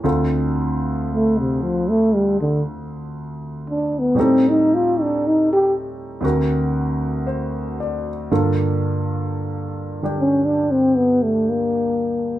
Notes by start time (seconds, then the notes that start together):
0.04 D2 D3 C4 F4 A4
1.11 A3
1.38 C3
1.62 F3
1.89 A3
2.15 G3
2.41 D3
3.70 D4
3.99 B3
4.15 A2 G3 C4 D#4
4.20 C4 A4
4.49 D#4
4.74 F4
5.01 D4
5.27 D#4
5.53 G4
6.21 D2 D3 C4 F#4
6.25 A#4
7.27 C5
7.80 D5
8.31 G2 D3 A#3 F4 A4
10.02 D3 G3 D4 G4
10.20 C#4
10.45 D4
10.71 C4
10.96 B3
11.23 A3
11.49 A#3